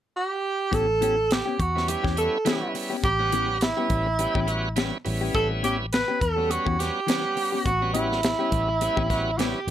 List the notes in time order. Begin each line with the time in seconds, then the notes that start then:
0.16 G4
0.71 A1 E3 B3 C#4 G4 A4, kick, closed hi-hat
0.88 muted clean electric guitar stroke
1.01 E3 B3 C#4 G4, closed hi-hat
1.17 muted clean electric guitar stroke
1.31 G4, snare, closed hi-hat
1.46 B3 C#4 G4
1.59 E2 F#4, muted clean electric guitar stroke, kick, closed hi-hat
1.75 G3 B3 C#4 E4, muted clean electric guitar stroke, snare
1.88 G4, muted clean electric guitar stroke, closed hi-hat
2.04 E2 E3 B3 C#4 G4, kick, snare
2.17 G3 B3 C#4 E4 A4, muted clean electric guitar stroke, closed hi-hat
2.45 E3 G3 B3 C#4 E4 G4, snare, closed hi-hat
2.62 muted clean electric guitar stroke
2.74 muted clean electric guitar stroke, open hi-hat
2.90 B3 C#4 G4
3.04 A1 G4, kick, closed hi-hat
3.19 G3 B3 C#4 F#5, muted clean electric guitar stroke
3.32 E3 B3 C#4 G4, closed hi-hat
3.48 muted clean electric guitar stroke
3.61 E4, snare, closed hi-hat
3.77 G3 B3 C#4 E4 G4
3.90 A1, muted clean electric guitar stroke, kick, closed hi-hat
4.06 muted clean electric guitar stroke
4.19 G3 B3 C#4 G4, muted clean electric guitar stroke, closed hi-hat
4.35 A1 E3 B3 C#4 G4, kick
4.47 G3 B3 C#4 F#4, closed hi-hat
4.76 E3 G3 B3 C#4 E4 G4, snare, closed hi-hat
4.93 muted clean electric guitar stroke
5.05 A1 G3 B3 C#4 E4, muted clean electric guitar stroke, open hi-hat
5.21 B3 C#4 G4
5.34 A1 A4, kick, closed hi-hat
5.50 muted clean electric guitar stroke
5.63 E3 B3 C#4 G4, closed hi-hat
5.79 muted clean electric guitar stroke
5.93 B4, snare, closed hi-hat
6.08 B3 C#4 G4
6.21 E2 A4, muted clean electric guitar stroke, kick, closed hi-hat
6.36 G3 B3 C#4 F#4, muted clean electric guitar stroke
6.49 F#4, muted clean electric guitar stroke, closed hi-hat
6.65 E2 E3 B3 C#4 G4, kick
6.79 G3 B3 C#4 F#4 G4, muted clean electric guitar stroke, snare, closed hi-hat
7.07 E3 G3 B3 C#4 G4 F#5, snare, closed hi-hat
7.23 muted clean electric guitar stroke
7.36 muted clean electric guitar stroke, open hi-hat
7.52 B3 C#4 G4
7.65 A1 F#4, kick, closed hi-hat
7.81 G3 B3 C#4 F#4, muted clean electric guitar stroke
7.93 E3 B3 C#4 E4 G4, closed hi-hat
8.10 muted clean electric guitar stroke, snare
8.23 snare, closed hi-hat
8.39 G3 B3 C#4 E4 G4
8.52 A1, muted clean electric guitar stroke, kick, closed hi-hat
8.68 muted clean electric guitar stroke
8.81 G3 B3 C#4 E4, muted clean electric guitar stroke, closed hi-hat
8.97 A1 E3 B3 C#4 G4, kick
9.10 G3 B3 C#4 F#4, kick, snare, closed hi-hat
9.38 E3 G3 B3 C#4 E4 G4, snare, closed hi-hat
9.55 muted clean electric guitar stroke
9.67 A1, muted clean electric guitar stroke